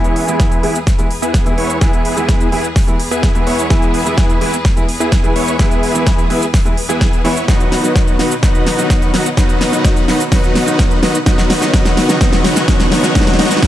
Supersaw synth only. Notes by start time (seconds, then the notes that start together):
Already playing: B3 E4 G#4
0.63 B3 E4 G#4
1.22 B3 E4 G#4
1.58 B3 E4 C#5
1.81 B3 E4 G#4
2.52 B3 E4 G#4
3.11 B3 E4 G#4
3.47 B3 E4 C#5
3.70 B3 E4 G#4
4.41 B3 E4 G#4
5.00 B3 E4 G#4
5.36 B3 E4 C#5
5.59 B3 E4 G#4
6.30 B3 E4 G#4
6.89 B3 E4 G#4
7.25 B3 E4 C#5
7.48 B3 D#4 F#4
8.19 B3 D#4 F#4
8.43 B3 D#4 F#4
9.14 B3 D#4 F#4
9.37 B3 D#4 F#4
10.08 B3 D#4 F#4
10.32 B3 D#4 F#4
11.03 B3 D#4 F#4
11.26 B3 D#4 F#4
11.74 B3 D#4 F#4
12.21 B3 D#4
12.68 B3 D#4 F#4
13.15 B3 D#4 F#4
13.39 B3 D#4 F#4
13.62 B3 D#4 F#4